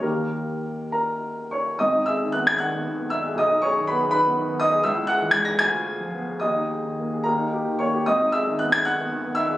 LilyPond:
<<
  \new Staff \with { instrumentName = "Grand piano" } { \time 6/8 \key gis \minor \tempo 4. = 76 ais'4. <ais' ais''>4 <cis'' cis'''>8 | <dis'' dis'''>8 <e'' e'''>8 fis'''16 gis'''16 <fis'' fis'''>4 <e'' e'''>8 | <dis'' dis'''>8 <cis'' cis'''>8 <b' b''>8 <b' b''>4 <dis'' dis'''>8 | <e'' e'''>8 <fis'' fis'''>8 gis'''16 ais'''16 <aes'' aes'''>4. |
<dis'' dis'''>4. <ais' ais''>4 <cis'' cis'''>8 | <dis'' dis'''>8 <e'' e'''>8 fis'''16 gis'''16 <fis'' fis'''>4 <e'' e'''>8 | }
  \new Staff \with { instrumentName = "Grand piano" } { \time 6/8 \key gis \minor <dis, dis ais g'>2. | gis,,16 dis'16 gis'16 dis16 b16 gis'16 dis16 b16 dis16 b16 dis'16 gis'16 | b,,16 dis'16 gis'16 dis16 b16 gis'16 dis16 b16 dis16 b16 dis'16 gis'16 | cis,16 e'16 gis'16 e16 gis16 gis'16 d,16 f'16 aes'16 f16 b16 aes'16 |
dis,16 dis'16 gis'16 dis16 ais16 gis'16 dis,16 dis'16 g'16 dis16 ais16 g'16 | gis,,16 dis'16 gis'16 dis16 b16 gis'16 dis16 b16 dis16 b16 dis'16 gis'16 | }
>>